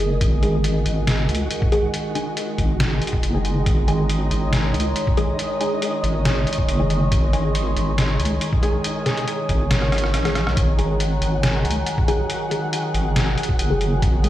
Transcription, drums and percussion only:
0.21 kick, closed hi-hat
0.43 closed hi-hat
0.64 closed hi-hat
0.86 closed hi-hat
1.07 snare, closed hi-hat
1.29 closed hi-hat
1.35 closed hi-hat
1.51 closed hi-hat
1.62 kick
1.72 closed hi-hat
1.94 closed hi-hat
2.15 closed hi-hat
2.37 closed hi-hat
2.58 kick, closed hi-hat
2.80 snare, closed hi-hat
3.02 closed hi-hat
3.07 closed hi-hat
3.13 kick
3.23 closed hi-hat
3.45 closed hi-hat
3.66 kick, closed hi-hat
3.88 closed hi-hat
4.10 closed hi-hat
4.31 closed hi-hat
4.53 snare, closed hi-hat
4.74 closed hi-hat
4.80 closed hi-hat
4.96 closed hi-hat
5.07 kick
5.17 closed hi-hat
5.39 closed hi-hat
5.61 closed hi-hat
5.82 closed hi-hat
6.04 closed hi-hat
6.25 snare, closed hi-hat
6.47 closed hi-hat
6.53 closed hi-hat
6.58 kick
6.69 closed hi-hat
6.90 closed hi-hat
7.12 kick, closed hi-hat
7.33 closed hi-hat
7.55 closed hi-hat
7.77 closed hi-hat
7.98 snare, closed hi-hat
8.20 closed hi-hat
8.25 closed hi-hat
8.41 closed hi-hat
8.53 kick
8.63 closed hi-hat
8.84 closed hi-hat
9.06 snare, closed hi-hat
9.17 closed hi-hat
9.28 closed hi-hat
9.49 kick, closed hi-hat
9.71 cross-stick, snare, closed hi-hat
9.82 cross-stick
9.92 cross-stick, closed hi-hat
9.98 closed hi-hat
10.04 cross-stick
10.14 cross-stick, closed hi-hat
10.25 cross-stick, closed hi-hat
10.35 cross-stick, closed hi-hat
10.47 cross-stick
10.57 kick, closed hi-hat
10.79 closed hi-hat
11.00 closed hi-hat
11.22 closed hi-hat
11.43 snare, closed hi-hat
11.65 closed hi-hat
11.71 closed hi-hat
11.87 closed hi-hat
11.98 kick
12.08 closed hi-hat
12.30 closed hi-hat
12.51 closed hi-hat
12.73 closed hi-hat
12.95 closed hi-hat
13.16 snare, closed hi-hat
13.38 closed hi-hat
13.43 closed hi-hat
13.49 kick
13.59 closed hi-hat
13.81 closed hi-hat
14.02 kick, closed hi-hat
14.24 closed hi-hat

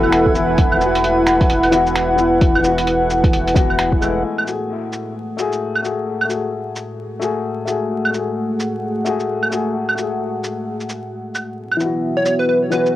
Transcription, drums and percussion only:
0.03 claves
0.12 finger snap, closed hi-hat
0.26 kick
0.35 cabasa
0.58 kick, closed hi-hat
0.72 claves
0.81 cabasa
0.95 closed hi-hat
1.04 closed hi-hat
1.27 finger snap, cabasa
1.41 kick, closed hi-hat
1.50 closed hi-hat
1.63 closed hi-hat, claves
1.72 closed hi-hat, cabasa
1.86 cabasa
1.95 finger snap, closed hi-hat
2.18 cabasa
2.41 kick, closed hi-hat
2.55 claves
2.64 cabasa
2.78 closed hi-hat
2.87 closed hi-hat
3.10 cabasa
3.24 kick, closed hi-hat
3.33 closed hi-hat
3.48 closed hi-hat, cabasa
3.56 kick, closed hi-hat, cabasa
3.70 claves
3.79 finger snap, closed hi-hat
3.92 kick
4.02 cabasa, claves
4.38 claves
4.47 cabasa
4.93 cabasa
5.39 cabasa
5.52 cabasa
5.75 claves
5.85 cabasa
6.21 claves
6.30 cabasa
6.76 cabasa
7.22 cabasa
7.68 cabasa
8.05 claves
8.14 cabasa
8.60 cabasa
9.06 cabasa
9.20 cabasa
9.42 claves
9.52 cabasa
9.89 claves
9.98 cabasa
10.44 cabasa
10.80 cabasa
10.89 cabasa
11.35 cabasa, claves
11.72 claves
11.80 cabasa
12.26 cabasa
12.72 cabasa
12.86 cabasa

